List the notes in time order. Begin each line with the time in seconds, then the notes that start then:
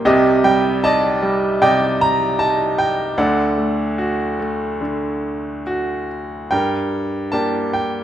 0.05 C2 C3 G4 D#5
0.44 G3 G5
0.83 D#4 D5 D#5 A5
1.22 G3
1.62 C3 D5 D#5 G5
2.01 A#5
2.39 D#4 A5
2.78 G5
3.18 D2 D3 A4 D5 F#5
3.58 A3
3.98 F#4
4.39 A3
4.81 D3
5.67 F#4
6.51 G2 A#4 G5
7.32 A#3 D4 G4 A5
7.73 G5